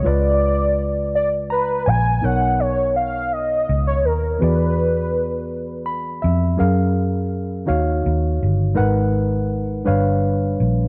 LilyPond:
<<
  \new Staff \with { instrumentName = "Soft synth lead" } { \time 6/8 \key b \lydian \tempo 4. = 55 d''4. d''8 b'8 gis''8 | fis''8 cis''8 eis''8 dis''8. cis''16 ais'8 | b'2 r4 | r2. |
r2. | }
  \new Staff \with { instrumentName = "Reed electric piano" } { \time 6/8 \key b \lydian << { r2 ais''8 gis''8 | r2. | r2 b''8 e''8 | r2. |
r2. | } \\ { <cis gis eis' b' d''>2. | <b, b dis' ais' cis''>2. | <e b fis' gis' d''>2. | <fis cis' gis' ais' eis''>4. <dis dis' fis' cis'' eis''>4. |
<gis dis' ais' b' fis''>4. <g d' b' cis'' f''>4. | } >> }
  \new Staff \with { instrumentName = "Fingered electric bass" } { \clef bass \time 6/8 \key b \lydian cis,2~ cis,8 ais,,8 | b,,2 cis,8 dis,8 | e,2~ e,8 eis,8 | fis,4. dis,8 dis,8 g,,8 |
gis,,4. g,,4 ais,,8 | }
>>